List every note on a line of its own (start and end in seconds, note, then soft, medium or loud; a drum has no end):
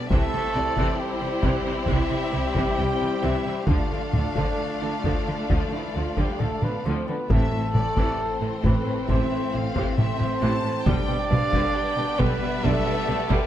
0.00 0.11 B3 medium
0.00 0.12 B3 medium
0.00 0.11 D4 medium
0.00 0.12 D4 medium
0.00 0.11 D5 medium
0.10 0.19 C2 medium
0.10 0.32 C3 medium
0.10 0.20 C3 medium
0.10 0.44 E3 medium
0.10 0.32 E3 medium
0.10 0.96 A3 medium
0.10 3.64 C4 medium
0.10 3.68 C4 medium
0.10 0.44 C4 medium
0.10 3.68 E4 medium
0.10 3.64 G4 medium
0.10 1.01 A4 loud
0.10 3.68 C5 medium
0.10 0.54 E5 medium
0.10 taiko medium
0.33 0.42 C3 medium
0.33 0.42 E3 medium
0.33 0.41 G3 soft
0.55 0.64 C2 medium
0.55 0.64 C3 medium
0.55 0.64 E3 medium
0.55 0.99 D5 medium
0.77 0.98 C3 medium
0.77 0.86 C3 medium
0.77 0.98 E3 medium
0.77 taiko medium
0.99 1.86 G3 medium
0.99 1.87 G4 medium
0.99 1.89 C5 medium
1.21 1.29 C3 soft
1.21 1.30 E3 medium
1.43 1.52 C2 medium
1.43 1.64 C3 medium
1.43 1.51 C3 medium
1.43 1.64 E3 medium
1.43 taiko medium
1.65 1.73 C3 soft
1.65 1.74 E3 medium
1.65 1.73 G3 medium
1.87 1.97 C2 medium
1.87 1.96 C3 medium
1.87 2.09 C3 medium
1.87 2.22 E3 medium
1.87 2.09 E3 medium
1.87 3.65 G3 medium
1.87 2.22 C4 medium
1.87 3.64 G4 medium
1.87 2.78 E5 medium
1.87 taiko medium
2.10 2.18 C3 soft
2.10 2.19 E3 soft
2.10 2.19 G3 soft
2.32 2.42 C2 soft
2.32 2.41 C3 soft
2.32 2.41 E3 soft
2.55 2.76 C3 medium
2.55 2.64 C3 medium
2.55 2.76 E3 medium
2.55 taiko medium
2.77 2.87 C2 soft
2.77 2.86 C3 soft
2.77 2.86 E3 soft
2.77 2.86 G3 soft
2.77 3.22 G5 medium
3.00 3.08 C3 soft
3.00 3.09 E3 medium
3.23 3.31 C2 medium
3.23 3.31 C3 medium
3.23 3.44 C3 medium
3.23 3.44 E3 medium
3.23 3.68 E5 medium
3.45 3.54 C3 soft
3.45 3.53 E3 medium
3.45 3.54 G3 soft
3.67 3.76 D2 medium
3.67 3.89 D3 medium
3.67 3.77 D3 medium
3.67 4.02 F3 soft
3.67 3.89 F3 medium
3.67 7.28 A3 medium
3.67 7.11 A3 soft
3.67 4.02 D4 soft
3.67 5.76 D4 medium
3.67 7.07 D4 medium
3.67 7.30 F4 medium
3.67 7.28 A4 medium
3.67 7.30 D5 medium
3.67 6.81 F5 medium
3.67 taiko medium
3.72 5.70 D3 medium
3.91 4.00 D3 soft
3.91 4.00 F3 soft
4.13 4.22 D2 soft
4.13 4.22 D3 soft
4.13 4.22 F3 soft
4.13 taiko mid soft
4.36 4.45 D3 medium
4.36 4.58 D3 medium
4.36 4.58 F3 medium
4.36 taiko medium
4.82 4.90 D3 soft
4.82 4.91 D3 soft
4.82 4.90 F3 soft
5.04 5.13 D2 medium
5.04 5.26 D3 soft
5.04 5.13 D3 medium
5.04 5.25 F3 medium
5.04 taiko medium
5.27 5.36 D3 soft
5.27 5.35 F3 soft
5.50 5.59 D2 medium
5.50 5.58 D3 medium
5.50 5.71 D3 soft
5.50 5.71 F3 medium
5.50 5.84 F3 soft
5.50 5.84 D4 soft
5.50 taiko medium
5.71 5.79 D3 soft
5.71 5.96 E3 soft
5.71 5.82 F3 soft
5.71 5.97 E4 medium
5.95 6.04 D2 soft
5.95 6.03 D3 soft
5.95 6.04 D3 soft
5.95 6.03 F3 soft
5.95 6.18 F3 soft
5.95 6.20 F4 medium
6.17 6.25 D3 medium
6.17 6.39 D3 soft
6.17 6.39 F3 soft
6.17 6.41 G3 soft
6.17 6.41 G4 medium
6.17 taiko medium
6.39 6.49 D2 soft
6.39 6.47 D3 soft
6.39 6.49 F3 soft
6.39 6.64 A3 medium
6.39 6.65 A4 medium
6.39 taiko mid medium
6.62 6.70 D3 soft
6.62 6.72 D3 soft
6.62 6.72 F3 soft
6.62 6.85 B3 soft
6.62 6.87 B4 medium
6.62 taiko mid soft
6.85 6.94 D2 medium
6.85 6.94 D3 medium
6.85 7.07 D3 soft
6.85 7.07 F3 medium
6.85 7.08 C4 soft
6.85 7.08 C5 medium
7.08 7.16 D3 soft
7.08 7.18 F3 soft
7.08 7.32 B3 medium
7.08 7.33 B4 medium
7.29 7.38 A1 medium
7.29 7.38 A2 medium
7.29 8.61 A2 medium
7.29 7.52 C3 medium
7.29 10.86 E3 medium
7.29 7.52 E3 medium
7.29 10.82 A3 medium
7.29 8.48 A3 medium
7.29 11.72 C4 medium
7.29 7.65 C4 medium
7.29 10.82 A4 medium
7.29 8.48 A4 medium
7.29 7.72 E5 medium
7.29 taiko medium
7.33 7.66 E3 medium
7.51 7.59 A2 soft
7.51 7.63 E3 soft
7.51 7.63 A3 soft
7.74 7.84 A1 soft
7.74 7.82 A2 soft
7.74 7.84 E3 soft
7.74 8.19 D5 medium
7.74 taiko mid medium
7.97 8.05 A2 medium
7.97 8.18 C3 medium
7.97 8.18 E3 medium
7.97 taiko medium
8.20 9.09 C5 medium
8.41 8.49 A2 soft
8.41 8.51 E3 soft
8.64 8.74 A1 medium
8.64 8.72 A2 medium
8.64 8.85 C3 medium
8.64 8.85 E3 medium
8.64 9.08 C4 medium
8.64 9.08 B4 medium
8.64 taiko medium
8.86 8.94 A2 soft
8.86 8.95 E3 soft
8.86 8.95 A3 soft
9.09 9.18 A1 medium
9.09 9.17 A2 medium
9.09 9.30 C3 medium
9.09 9.42 E3 medium
9.09 9.30 E3 medium
9.09 9.98 C4 medium
9.09 9.43 C4 medium
9.09 9.69 C5 medium
9.09 9.54 E5 medium
9.09 taiko medium
9.31 9.39 A2 soft
9.31 9.39 E3 medium
9.31 9.40 A3 soft
9.53 9.63 A1 soft
9.53 9.61 A2 soft
9.53 9.62 E3 soft
9.53 9.98 F5 medium
9.75 9.83 A2 medium
9.75 9.96 C3 medium
9.75 9.96 E3 medium
9.75 taiko medium
9.97 10.07 A1 soft
9.97 10.06 A2 soft
9.97 10.05 E3 medium
9.97 10.06 A3 soft
9.97 10.86 C4 medium
9.97 10.83 C5 medium
9.97 10.41 E5 medium
9.97 taiko mid medium
10.19 10.27 A2 soft
10.19 10.29 E3 medium
10.19 taiko mid soft
10.41 10.51 A1 medium
10.41 10.49 A2 medium
10.41 10.63 C3 medium
10.41 10.63 E3 medium
10.41 10.86 A5 medium
10.63 10.71 A2 soft
10.63 10.73 E3 medium
10.63 10.73 A3 medium
10.85 10.95 B1 medium
10.85 10.94 B2 medium
10.85 11.07 D3 medium
10.85 13.47 G3 medium
10.85 11.07 G3 medium
10.85 11.21 G3 medium
10.85 13.47 D4 medium
10.85 11.20 D4 medium
10.85 12.21 D4 medium
10.85 13.47 G4 medium
10.85 13.47 B4 medium
10.85 13.47 D5 medium
10.85 12.21 D5 loud
10.85 11.30 G5 medium
10.85 taiko loud
11.08 11.16 B2 medium
11.08 11.17 G3 soft
11.30 11.39 B1 medium
11.30 11.38 B2 medium
11.30 11.39 D3 soft
11.30 11.39 G3 medium
11.30 11.74 F5 medium
11.30 taiko mid medium
11.52 11.60 B2 medium
11.52 11.74 D3 medium
11.52 11.74 G3 medium
11.52 taiko medium
11.76 13.47 B3 medium
11.76 12.20 G5 medium
11.97 12.05 B2 medium
11.97 12.06 D3 medium
11.97 12.06 G3 medium
12.18 12.28 B1 medium
12.18 12.27 B2 medium
12.18 12.40 D3 medium
12.18 12.40 G3 medium
12.18 12.64 B3 medium
12.18 12.66 B4 medium
12.18 13.47 E5 medium
12.18 taiko medium
12.41 12.50 B2 medium
12.41 12.49 G3 medium
12.62 12.72 B1 medium
12.62 12.72 B2 medium
12.62 12.85 D3 medium
12.62 12.96 G3 medium
12.62 12.84 G3 medium
12.62 13.47 A3 medium
12.62 12.97 D4 medium
12.62 13.47 A4 loud
12.62 taiko medium
12.86 12.94 B2 medium
12.86 12.94 G3 medium
13.07 13.17 B1 medium
13.07 13.16 B2 medium
13.07 13.15 D3 medium
13.07 13.15 G3 medium
13.30 13.38 B2 medium
13.30 13.47 D3 medium
13.30 13.47 G3 medium
13.30 taiko medium